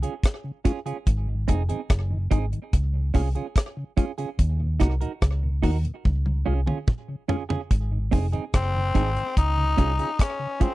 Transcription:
0.02 tonewheel organ C#3, clean electric guitar C#4 F4 G#4, closed hi-hat
0.23 kick, cross-stick, closed hi-hat
0.44 tonewheel organ C#3
0.65 tonewheel organ G#3 C#4 F4, clean electric guitar C#4 F4 G#4, kick, closed hi-hat
0.86 tonewheel organ C#3, clean electric guitar C#4 F4 G#4, closed hi-hat
1.07 fingered electric bass G#1, kick, closed hi-hat
1.28 tonewheel organ G#2 D#3
1.48 fingered electric bass F1, tonewheel organ G#3 C4 D#4, clean electric guitar C4 D#4 G#4, kick, closed hi-hat
1.69 tonewheel organ G#2 D#3, clean electric guitar C4 D#4 G#4, closed hi-hat
1.90 fingered electric bass F#1, kick, cross-stick, closed hi-hat
2.11 tonewheel organ G#2 D#3
2.31 fingered electric bass G#1, tonewheel organ G#3 C4 D#4, clean electric guitar C4 D#4 G#4, kick, closed hi-hat
2.52 tonewheel organ G#2 D#3, closed hi-hat
2.73 fingered electric bass C#2, kick, closed hi-hat
2.93 tonewheel organ C#3
3.14 fingered electric bass C2, tonewheel organ G#3 C#4 F4, clean electric guitar C#4 F4 G#4, kick, open hi-hat
3.35 tonewheel organ C#3, clean electric guitar C#4 F4 G#4, closed hi-hat
3.56 kick, cross-stick, closed hi-hat
3.77 tonewheel organ C#3
3.97 tonewheel organ G#3 C#4 F4, clean electric guitar C#4 F4 G#4, kick, closed hi-hat
4.18 tonewheel organ C#3, clean electric guitar C#4 F4 G#4, closed hi-hat
4.39 fingered electric bass D#2, kick, closed hi-hat
4.60 tonewheel organ D#2 A#2
4.80 fingered electric bass C2, tonewheel organ A#3 D#4 F#4, clean electric guitar D#4 F#4 A#4, kick, cross-stick, closed hi-hat
5.01 tonewheel organ D#2 A#2, clean electric guitar D#4 F#4 A#4, closed hi-hat
5.22 fingered electric bass C#2, kick, cross-stick, closed hi-hat
5.43 tonewheel organ D#2 A#2
5.63 fingered electric bass D#2, tonewheel organ A#3 D#4 F#4, clean electric guitar D#4 F#4 A#4, kick, open hi-hat
5.84 tonewheel organ D#2 A#2, closed hi-hat
6.05 fingered electric bass C#2, kick, high tom
6.25 tonewheel organ C#3, high tom
6.46 fingered electric bass C2, tonewheel organ G#3 C#4 F4, clean electric guitar C#4 F4 G#4
6.66 tonewheel organ C#3, clean electric guitar C#4 F4 G#4, mid tom
6.88 kick, mid tom
7.08 tonewheel organ C#3
7.28 tonewheel organ G#3 C#4 F4, clean electric guitar C#4 F4 G#4, floor tom
7.49 tonewheel organ C#3, clean electric guitar C#4 F4 G#4, floor tom
7.71 fingered electric bass G#1, kick, closed hi-hat
7.91 tonewheel organ G#2 D#3
8.11 fingered electric bass F1, tonewheel organ G#3 C4 D#4, clean electric guitar C4 D#4 G#4, kick, open hi-hat
8.33 tonewheel organ G#2 D#3, clean electric guitar C4 D#4 G#4, closed hi-hat
8.54 fingered electric bass F#1, tenor saxophone C4, kick, cross-stick, closed hi-hat
8.74 tonewheel organ G#2 D#3
8.95 fingered electric bass G#1, tonewheel organ G#3 C4 D#4, clean electric guitar C4 D#4 G#4, kick, closed hi-hat
9.16 tonewheel organ G#2 D#3, closed hi-hat
9.37 fingered electric bass C#2, tenor saxophone D#4, kick, closed hi-hat
9.57 tonewheel organ C#3
9.77 fingered electric bass C2, tonewheel organ G#3 C#4 F4, clean electric guitar C#4 F4 G#4, kick, closed hi-hat
9.98 tonewheel organ C#3, clean electric guitar C#4 F4 G#4, closed hi-hat
10.19 tenor saxophone C#4, kick, cross-stick, closed hi-hat
10.39 tonewheel organ C#3
10.60 tonewheel organ G#3 C#4 F4, tenor saxophone C4, clean electric guitar C#4 F4 G#4, kick, closed hi-hat

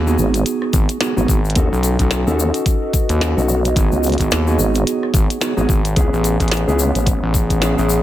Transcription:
Already playing: analog synth bass D#2
0.06 clean electric guitar B3 D#4 F#4 G#4, shaker
0.18 wobble bass G#1, shaker
0.34 closed hi-hat, shaker
0.46 closed hi-hat, shaker
0.62 cross-stick
0.73 analog synth bass G#1, kick, closed hi-hat, shaker
0.89 closed hi-hat, shaker
1.00 clean electric guitar B3 D#4 F#4 G#4, snare, closed hi-hat, shaker
1.16 wobble bass G#1, clean electric guitar B3 D#4 F#4 G#4, shaker
1.28 analog synth bass G#1, kick, shaker
1.45 shaker
1.50 closed hi-hat
1.55 wobble bass D#2, clean electric guitar C#4 D#4 F#4 A4, ambient pad F#4, kick, closed hi-hat, shaker
1.72 analog synth bass B1, shaker
1.83 closed hi-hat, shaker
1.93 ambient pad D#5
1.99 analog synth bass B1, clean electric guitar C#4 D#4 F#4 A4, kick, closed hi-hat, shaker
2.11 snare, closed hi-hat, shaker
2.15 ambient pad B4
2.27 wobble bass D#2, clean electric guitar C#4 D#4 F#4 A4, shaker
2.39 shaker
2.54 closed hi-hat, shaker
2.66 kick, closed hi-hat, shaker
2.93 kick, closed hi-hat, shaker
3.09 analog synth bass D#2, closed hi-hat, shaker
3.21 clean electric guitar C#4 D#4 F#4 A4, snare, closed hi-hat, shaker
3.36 wobble bass B1, clean electric guitar C#4 D#4 F#4 A4, shaker
3.49 shaker
3.65 closed hi-hat, shaker
3.75 analog synth bass G#1, clean electric guitar B3 D#4 F#4 G#4, ambient pad G#4, kick, closed hi-hat, shaker
3.92 wobble bass C#2, shaker
4.03 closed hi-hat, shaker
4.07 ambient pad C#5, closed hi-hat
4.10 closed hi-hat
4.12 closed hi-hat
4.18 analog synth bass G#1, clean electric guitar B3 D#4 F#4 G#4, kick, closed hi-hat, shaker
4.21 closed hi-hat
4.31 analog synth bass D#2, snare, closed hi-hat, shaker
4.47 clean electric guitar B3 D#4 F#4 G#4, shaker
4.59 wobble bass G#1, shaker
4.75 ambient pad F#5, closed hi-hat, shaker
4.87 closed hi-hat, shaker
5.03 cross-stick
5.14 analog synth bass G#1, kick, closed hi-hat, shaker
5.30 closed hi-hat, shaker
5.41 clean electric guitar B3 D#4 F#4 G#4, snare, closed hi-hat, shaker
5.57 wobble bass G#1, clean electric guitar B3 D#4 F#4 G#4, shaker
5.69 analog synth bass G#1, kick, shaker
5.85 closed hi-hat, shaker
5.96 wobble bass C#2, clean electric guitar B3 C#4 E4 G#4, kick, closed hi-hat, shaker
6.13 analog synth bass A1, shaker
6.24 closed hi-hat, shaker
6.40 analog synth bass A1, clean electric guitar B3 C#4 E4 G#4, kick, closed hi-hat, shaker
6.48 snare, closed hi-hat
6.52 closed hi-hat, shaker
6.57 closed hi-hat
6.67 wobble bass C#2, clean electric guitar B3 C#4 E4 G#4, shaker
6.79 shaker
6.95 wobble bass A1, closed hi-hat, shaker
7.07 kick, closed hi-hat, shaker
7.23 analog synth bass A1
7.34 kick, shaker
7.50 kick, closed hi-hat, shaker
7.60 clean electric guitar B3 C#4 E4 G#4, snare, closed hi-hat, shaker
7.77 analog synth bass A1, clean electric guitar B3 C#4 E4 G#4, shaker
7.89 shaker

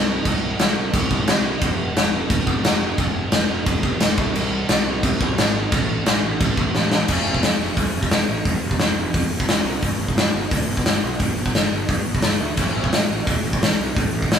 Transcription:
Already playing: picked electric bass C2
0.25 picked electric bass C2, kick, crash
0.59 picked electric bass C2, snare, crash
0.76 picked electric bass C2
0.93 picked electric bass C2, kick, crash
1.10 picked electric bass C2, kick
1.26 picked electric bass C2, snare, crash
1.61 picked electric bass F1, kick, crash
1.95 picked electric bass F1, snare, crash
2.13 picked electric bass F1
2.30 picked electric bass F1, kick, crash
2.47 picked electric bass F1, kick
2.63 picked electric bass F1, snare, crash
2.98 picked electric bass F1, kick, crash
3.32 picked electric bass F1, snare, crash
3.49 picked electric bass F1
3.66 picked electric bass F1, kick, crash
3.83 picked electric bass F1, kick
4.00 picked electric bass F1, snare, crash
4.18 picked electric bass C2, kick
4.34 picked electric bass C2, crash
4.69 picked electric bass C2, snare, crash
4.86 picked electric bass C2
5.03 picked electric bass C2, kick, crash
5.20 picked electric bass C2, kick
5.37 picked electric bass G#1, snare, crash
5.72 picked electric bass A1, kick, crash
6.06 picked electric bass A1, snare, crash
6.23 picked electric bass A1
6.40 picked electric bass A1, kick, crash
6.57 picked electric bass A1, kick
6.74 picked electric bass A1, snare
6.92 snare
7.08 picked electric bass F1, kick, crash
7.26 picked electric bass F1
7.34 kick
7.42 picked electric bass F2, snare, open hi-hat
7.59 picked electric bass F1
7.77 picked electric bass C2, kick, open hi-hat
7.94 picked electric bass F1
8.03 kick
8.11 picked electric bass F1, snare, open hi-hat
8.28 picked electric bass A1
8.45 picked electric bass F1, kick, open hi-hat
8.62 picked electric bass F1
8.71 kick
8.79 picked electric bass F1, snare, open hi-hat
8.95 picked electric bass F1
9.14 picked electric bass F2, kick, open hi-hat
9.31 picked electric bass F1
9.40 kick
9.48 picked electric bass F1, snare, open hi-hat
9.64 picked electric bass C2
9.82 picked electric bass G1, kick, open hi-hat
9.99 picked electric bass G1
10.08 kick
10.15 picked electric bass G2, snare, open hi-hat
10.33 picked electric bass G1
10.51 picked electric bass D2, kick, open hi-hat
10.68 picked electric bass G1
10.77 kick
10.85 picked electric bass G1, snare, open hi-hat
11.03 picked electric bass B1
11.19 picked electric bass G1, kick, open hi-hat
11.37 picked electric bass G1
11.46 kick
11.55 picked electric bass G1, snare, open hi-hat
11.71 picked electric bass G1
11.89 picked electric bass G2, kick, open hi-hat
12.06 picked electric bass G1
12.15 kick
12.22 picked electric bass G1, snare, open hi-hat
12.41 picked electric bass D2
12.57 picked electric bass A1, kick, crash
12.75 picked electric bass A1
12.84 kick
12.92 picked electric bass A2, snare, open hi-hat
13.10 picked electric bass A1
13.26 picked electric bass E2, kick, open hi-hat
13.44 picked electric bass A1
13.53 kick
13.62 picked electric bass A1, snare, open hi-hat
13.79 picked electric bass C2
13.96 picked electric bass A1, kick, open hi-hat
14.13 picked electric bass A1
14.22 kick
14.30 picked electric bass A1, snare, open hi-hat

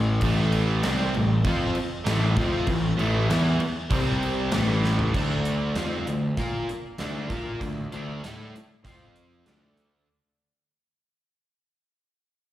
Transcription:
Already playing: picked electric bass A1, overdriven electric guitar A2 E3 A3
0.21 picked electric bass A1, overdriven electric guitar A2 E3, kick, crash
0.25 overdriven electric guitar A3
0.52 crash
0.83 picked electric bass C2, overdriven electric guitar C3 G3 C4, snare, crash
1.14 picked electric bass A1, overdriven electric guitar A2 E3, crash
1.44 picked electric bass F2, overdriven electric guitar F3 C4 F4, kick, crash
1.75 muted overdriven electric guitar stroke, muted picked electric bass stroke, crash
2.06 picked electric bass A1, overdriven electric guitar A2 E3 A3, snare, crash
2.37 picked electric bass F2, overdriven electric guitar F3 C4 F4, kick, crash
2.67 picked electric bass A1, overdriven electric guitar A2 E3, kick, crash
2.97 picked electric bass A1, overdriven electric guitar A2 E3 A3, crash
3.29 picked electric bass E2, overdriven electric guitar E3 B3 E4, snare, crash
3.60 muted overdriven electric guitar stroke, muted picked electric bass stroke, crash
3.91 picked electric bass C2, overdriven electric guitar C3 G3 C4, kick, crash
4.23 crash
4.51 picked electric bass A1, overdriven electric guitar A2 E3 A3, snare, crash
4.84 snare
4.99 floor tom
5.13 picked electric bass D2, overdriven electric guitar D3 A3 D4, kick, crash
5.45 closed hi-hat
5.75 picked electric bass F2, overdriven electric guitar F3 C4 F4, snare, closed hi-hat
6.07 picked electric bass D2, overdriven electric guitar D3 A3, closed hi-hat
6.37 picked electric bass A#2, overdriven electric guitar A#3 F4 A#4, kick, closed hi-hat
6.67 muted overdriven electric guitar stroke, muted picked electric bass stroke, closed hi-hat
6.98 picked electric bass D2, overdriven electric guitar D3 A3 D4, snare, closed hi-hat
7.29 picked electric bass A#2, overdriven electric guitar A#3 F4 A#4, kick, closed hi-hat
7.61 picked electric bass D2, overdriven electric guitar D3 A3, kick, closed hi-hat
7.92 picked electric bass D2, overdriven electric guitar D3 A3 D4, closed hi-hat
8.23 picked electric bass A2, overdriven electric guitar A3 E4 A4, snare, closed hi-hat
8.54 muted overdriven electric guitar stroke, muted picked electric bass stroke, closed hi-hat
8.84 picked electric bass F2, overdriven electric guitar F3 C4 F4, kick, closed hi-hat
9.16 closed hi-hat
9.46 picked electric bass D2, overdriven electric guitar D3 A3 D4, snare, closed hi-hat
9.77 closed hi-hat

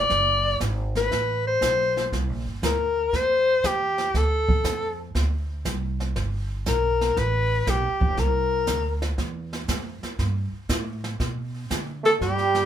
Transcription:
Already playing: alto saxophone D5
0.10 upright bass F#1, brush sweep, kick, snare
0.60 upright bass G#1, kick, snare, hi-hat pedal
0.95 alto saxophone B4, snare
1.11 upright bass A1, brush sweep, kick, snare
1.47 alto saxophone C5
1.61 upright bass B1, kick, snare, hi-hat pedal
1.97 snare
2.12 upright bass C2, brush sweep, kick, snare
2.29 upright bass A#1
2.45 upright bass G1
2.62 upright bass D2, alto saxophone A#4, kick, snare, hi-hat pedal
3.13 upright bass F2, alto saxophone C5, brush sweep, kick, snare
3.64 upright bass E2, alto saxophone G4, kick, snare, hi-hat pedal
3.98 snare
4.14 upright bass D2, alto saxophone A4, brush sweep, kick, snare
4.49 kick
4.64 upright bass F2, kick, snare, hi-hat pedal
5.15 upright bass D2, brush sweep, kick, snare
5.65 upright bass C2, kick, snare, hi-hat pedal
6.00 snare
6.16 upright bass G1, brush sweep, kick, snare
6.66 upright bass B1, alto saxophone A#4, kick, snare, hi-hat pedal
7.01 snare
7.17 upright bass A1, alto saxophone B4, brush sweep, kick, snare
7.67 upright bass B1, alto saxophone G4, kick, snare, hi-hat pedal
7.83 upright bass G1
8.00 upright bass F1, kick
8.17 upright bass C2, alto saxophone A#4, brush sweep, kick, snare
8.67 upright bass D2, kick, snare, hi-hat pedal
9.02 snare
9.18 upright bass E2, brush sweep, kick, snare
9.53 snare
9.68 upright bass F2, kick, snare, hi-hat pedal
10.02 muted upright bass stroke, snare
10.19 upright bass G2, brush sweep, kick, snare
10.52 muted upright bass stroke
10.69 upright bass A2, kick, snare, hi-hat pedal
11.04 snare
11.20 upright bass B2, brush sweep, kick, snare
11.70 upright bass D3, kick, snare, hi-hat pedal
12.03 trombone A3, alto saxophone A4, snare
12.20 upright bass G2, trombone G3, alto saxophone G4, brush sweep, kick, snare
12.38 snare
12.55 snare

